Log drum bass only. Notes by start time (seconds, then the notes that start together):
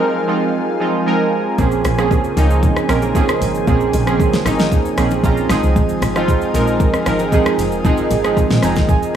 1.59 A#1
1.85 A#1
2.37 C#2
2.89 A#1
3.41 G#1
3.68 A#1
3.93 A#1
4.45 G#1
4.98 A#1
5.24 A#1
5.50 G#1
5.63 C2
5.76 G#1
6.02 G#1
6.54 A#1
7.06 G#1
7.58 F1
7.85 G#1
8.11 G#1
8.63 F1